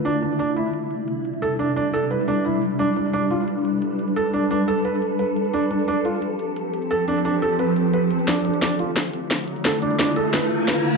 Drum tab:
HH |x-xxx-x-x-x-x-xx|x-xxx-x-x-x-x-xx|x-xxx-x-x-x-x-xx|x-xxx-x-x-x-x-xx|
SD |----------------|----------------|----------------|----------------|

HH |x-xxx-x-x-x-x-xx|x-xxx-x-x-x-x-xx|x-xxx-x-x-x-x-xx|x-xxx-x-x-x-x-xx|
SD |----------------|----------------|o---o---o---o---|o---o---o---o---|